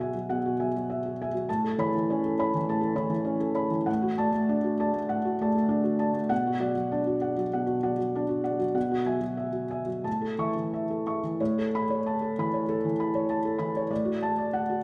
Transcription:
Already playing: B2 F#3 F#4 F#5
0.00 E5 G#5
0.14 F#3
0.29 B2 F#5
0.45 F#4
0.60 F#3 E5 G#5
0.76 F#3
0.90 E5
1.05 F#4
1.22 E5 G#5
1.34 F#3
1.49 A2 A5
1.64 A4
1.78 E3 C#5 B5
1.95 E3
2.10 C#4 C#5
2.25 A4
2.39 C#5 B5
2.54 E3
2.69 A2 A5
2.81 A4
2.96 E3 C#5 B5
3.10 E3
3.25 C#4 C#5
3.40 A4
3.54 C#5 B5
3.71 E3
3.86 A2 F#5
4.02 F#4
4.18 A3 D5 A5
4.32 A3
4.49 D4 D5
4.64 F#4
4.80 D5 A5
4.93 A3
5.09 A2 F#5
5.25 F#4
5.41 A3 D5 A5
5.55 A3
5.69 D4 D5
5.84 F#4
5.99 D5 A5
6.13 A3
6.29 B2 F#5
6.47 F#4
6.60 F#3 D5 F#5
6.75 F#3
6.92 D4 D5
7.07 F#4
7.21 D5 F#5
7.37 F#3
7.53 B2 F#5
7.66 F#4
7.83 F#3 D5 F#5
7.98 F#3
8.15 D4 D5
8.29 F#4
8.44 D5 F#5
8.59 F#3
8.74 B2 F#5
8.91 F#4
9.06 F#3 E5 G#5
9.21 F#3
9.37 E5
9.52 F#4
9.71 E5 G#5
9.85 F#3
10.04 A2 A5
10.22 A4
10.38 E3 E5 C#6
10.56 E3
10.74 E5
10.90 A4
11.06 E5 C#6
11.24 E3
11.40 A2 C#5
11.58 A4
11.75 B5
11.90 C#5
12.06 A5
12.22 A4
12.38 E3 B5
12.54 C#5
12.69 A4
12.85 E3
13.00 B5
13.15 C#5
13.29 A5
13.45 A4
13.58 E3 B5
13.77 C#5
13.90 A2 D5
14.05 F#4
14.23 A5
14.38 D5
14.53 F#5
14.69 F#4

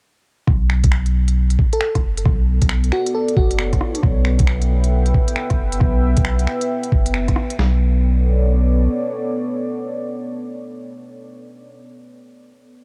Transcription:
0.47 B1, kick, cross-stick
0.70 finger snap
0.84 kick, closed hi-hat
0.92 finger snap
1.06 closed hi-hat
1.28 closed hi-hat
1.50 closed hi-hat
1.59 kick
1.73 A4, closed hi-hat
1.81 finger snap
1.95 kick, cross-stick, closed hi-hat
2.03 F#1
2.17 closed hi-hat
2.25 B1 B3, kick, cross-stick
2.46 A4
2.62 B1, kick, closed hi-hat
2.66 D5, finger snap
2.84 closed hi-hat
2.92 F#4, finger snap
3.06 C#5, closed hi-hat
3.15 A4
3.28 closed hi-hat
3.37 F#1 F#4, kick
3.51 closed hi-hat
3.59 finger snap
3.73 kick, cross-stick, closed hi-hat
3.81 cross-stick
3.95 closed hi-hat
4.03 B1, kick, cross-stick
4.23 B4, finger snap
4.30 E5 G5
4.39 kick, closed hi-hat
4.47 finger snap
4.62 closed hi-hat
4.84 closed hi-hat
5.06 closed hi-hat
5.14 kick
5.28 closed hi-hat
5.36 finger snap
5.50 kick, cross-stick, closed hi-hat
5.59 F#1
5.72 closed hi-hat
5.80 B1, kick, cross-stick
6.17 B1, kick, closed hi-hat
6.25 finger snap
6.39 closed hi-hat
6.47 finger snap
6.61 closed hi-hat
6.83 closed hi-hat
6.92 F#1, kick
7.06 closed hi-hat
7.14 finger snap
7.28 kick, cross-stick, closed hi-hat
7.36 cross-stick
7.50 closed hi-hat
7.59 B1 B3, snare
7.68 A4
7.74 C#5
7.79 D5

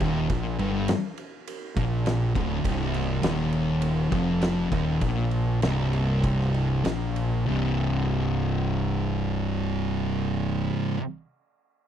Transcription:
0.00 D#1 D#2, kick, ride
0.29 A#1 A#2, kick, ride
0.59 G1 G2, ride
0.88 snare, ride
1.18 ride
1.47 ride
1.77 A#1 A#2, kick, ride
2.06 snare, ride
2.34 D1 D2, kick, ride
2.64 C1 C2, kick, ride
2.94 ride
3.23 D#1 D#2, snare, ride
3.52 ride
3.82 ride
4.11 F1 F2, kick, ride
4.42 snare, ride
4.71 D#1 D#2, kick, ride
5.01 A#1 A#2, kick, ride
5.31 ride
5.62 C1 C2, snare, ride
5.93 ride
6.24 kick, ride
6.40 snare
6.54 ride
6.85 A#1 A#2, snare, ride
7.16 ride
7.46 C1 C2 G2
7.50 C3

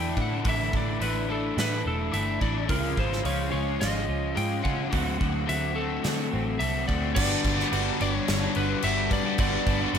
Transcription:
Already playing: E2 A2 D3 E3 A3 D4 E4 G5
0.16 A2 E3 A3 D4 E4, kick
0.22 F#5
0.44 A1 A2 D3 E3 A3 D4 E4, kick, open hi-hat
0.49 E5
0.73 A1 E3 A3 D4 E4 D5, kick
1.00 A1 D3 E3 A3 D4 E4 B4, open hi-hat
1.29 E3 A3 D4 E4 A4
1.56 A2 D3 E3 A3 D4 E4 B4, snare, open hi-hat
1.85 E1 A3 D4 E4 A4
2.12 G1 D3 E3 A3 D4 E4 E5, open hi-hat
2.40 A1 E3 A3 D4 E4 D5, kick
2.69 C#2 C#3 F3 G#3 C#4 F4 A#4, kick, open hi-hat
2.97 G#1 F3 G#3 C#4 F4 C5, kick
3.13 snare
3.23 C#2 C#3 F3 G#3 C#4 F4 C#5, open hi-hat
3.52 C#2 G#3 C#4 F4 C#5
3.80 G#1 C#3 F3 G#3 C#4 F4 D#5, snare, open hi-hat
4.09 C#2 G#3 C#4 F4
4.35 G#2 C#3 F3 G#3 C#4 G5, open hi-hat
4.39 F4
4.63 C#3 G#3 C#4 F4 F#5, kick
4.91 D2 D3 F#3 A3 C4 F#4, kick, open hi-hat
5.19 D2 F#3 A3 C4 F#4, kick
5.47 D2 D3 F#3 A3 C4 F#4 E5, open hi-hat
5.75 A3 C4 F#4 A4
6.02 D3 F#3 A3 C4 F#4, snare, open hi-hat
6.31 A1 A3 C4 F#4
6.59 C2 D3 A3 C4 F#4 E5, open hi-hat
6.87 D2 A3 C4 F#4 D5, kick
7.14 G1 G2 D3 G3 B3 D4 F#4 D5, kick, crash
7.43 G1 D3 G3 B3 D4, kick, crash
7.56 B3 D4 F#4, snare
7.60 G3
7.70 G1 G2 D3 G3 B3 D4 F#4, crash
7.99 G1 G2 D3 G3 B3 D4 F#4 D5, crash
8.13 G3 B3 D4 C#5, muted clean electric guitar stroke
8.28 G1, snare, crash
8.42 B3 D4 F#4
8.55 G1 D3 G3 B3 D4 B4, crash
8.59 F#4
8.69 G3 B3 D4, muted clean electric guitar stroke
8.82 G1 G2 D3 G3 B3 D4 E5, crash
8.87 F#4
9.10 D3 G3 B3 D4 D5, kick, crash
9.23 B3 D4 F#4
9.27 G3
9.38 G1 G2 D3 G3 B3 D4 F#4 D5, kick, crash
9.65 G1 D3 G3 B3 D4, kick, crash
9.79 G3 B3 D4 F#4
9.93 G1 G2 D3 G3 B3 D4 F#4, crash

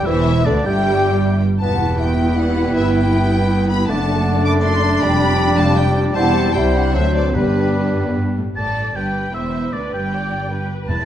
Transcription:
0.05 E1 E2 E3 E4 C5 E5
0.45 D2 D3 D4 B4 D5
0.64 G1 G2 G3 G4 E5 G5
1.60 E1 E2 B3 E4 G4 B4 F#5 A5
1.99 E5 G5
2.37 D5 F#5
2.75 G1 G2 B3 E4 B4 E5
2.95 E5 G5
3.70 G5 B5
3.89 F#1 F#2 A3 D4 D5 F#5 A5
4.45 B5 D6
4.64 A5 C6
5.01 F1 F2 G3 G4 G5 B5
5.58 F5 A5
5.77 D5 G5
6.16 E1 E2 G3 C4 E4 G4 C5 F#5 A5
6.55 C2 G3 E4 G4 C5 E5 G5
6.75 D4 D5 F#5
6.94 D2 F#3 C4 D4 A4 C5 E5
7.16 B4 D5
7.34 G1 G2 G3 B3 D4 G4 B4
7.77 G2
7.97 F#2
8.17 G2
8.38 A2
8.56 A1 A2 A4 D5 A5
8.95 G1 G2 G4 B4 G5
9.33 E1 E2 E4 C5 E5
9.73 D2 D4 B4 D5
9.92 G1 G2 G4 G5
10.13 D5
10.52 B4
10.88 E1 E2 E4 B4 A5
10.99 E2 E4 B4

